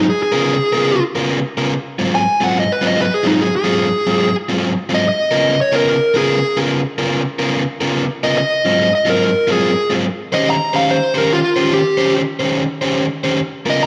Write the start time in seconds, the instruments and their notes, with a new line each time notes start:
0.10 lead electric guitar G#4
0.23 lead electric guitar G#4
0.32 overdriven electric guitar C#3 B3 F4 A#4
0.73 overdriven electric guitar C#3 B3 F4 A#4
1.15 overdriven electric guitar C#3 B3 F4 A#4
1.57 overdriven electric guitar C#3 B3 F4 A#4
1.99 overdriven electric guitar G#2 F#3 C4 F4
2.15 lead electric guitar G#5
2.40 overdriven electric guitar G#2 F#3 C4 F4, lead electric guitar F#5
2.60 lead electric guitar D#5
2.72 lead electric guitar B4
2.81 overdriven electric guitar G#2 F#3 C4 F4
2.87 lead electric guitar D#5
3.01 lead electric guitar B4
3.14 lead electric guitar G#4
3.24 overdriven electric guitar G#2 F#3 C4 F4, lead electric guitar D#4
3.41 lead electric guitar G#4
3.56 lead electric guitar G#4
3.64 overdriven electric guitar G#2 F#3 C4 F4
4.07 overdriven electric guitar G#2 F#3 C4 F4
4.49 overdriven electric guitar G#2 F#3 C4 F4
4.89 overdriven electric guitar G#2 F#3 C4 F4
4.95 lead electric guitar D#5
5.09 lead electric guitar D#5
5.31 overdriven electric guitar C#3 B3 F4 A#4
5.61 lead electric guitar C#5
5.72 overdriven electric guitar C#3 B3 F4 A#4, lead electric guitar A#4
6.14 overdriven electric guitar C#3 B3 F4 A#4, lead electric guitar G#4
6.57 overdriven electric guitar C#3 B3 F4 A#4
6.98 overdriven electric guitar C#3 B3 F4 A#4
7.39 overdriven electric guitar C#3 B3 F4 A#4
7.81 overdriven electric guitar C#3 B3 F4 A#4
8.23 overdriven electric guitar C#3 B3 F4 A#4, lead electric guitar D#5
8.38 lead electric guitar D#5
8.65 overdriven electric guitar G#2 F#3 C4 F4
8.95 lead electric guitar D#5
9.05 overdriven electric guitar G#2 F#3 C4 F4
9.10 lead electric guitar A#4
9.47 overdriven electric guitar G#2 F#3 C4 F4
9.52 lead electric guitar G#4
9.90 overdriven electric guitar G#2 F#3 C4 F4
10.32 overdriven electric guitar D#3 C#4 G4 C5, lead electric guitar D#5
10.50 lead electric guitar A#5
10.73 overdriven electric guitar D#3 C#4 G4 C5, lead electric guitar F5
10.91 lead electric guitar C5
11.14 overdriven electric guitar D#3 C#4 G4 C5, lead electric guitar A#4
11.33 lead electric guitar F4
11.56 overdriven electric guitar D#3 C#4 G4 C5
11.73 lead electric guitar G4
11.97 overdriven electric guitar D#3 C#4 G4 C5
12.39 overdriven electric guitar D#3 C#4 G4 C5
12.81 overdriven electric guitar D#3 C#4 G4 C5
13.24 overdriven electric guitar D#3 C#4 G4 C5
13.66 overdriven electric guitar C#3 B3 F4 A#4
13.70 lead electric guitar D#5
13.83 lead electric guitar A#5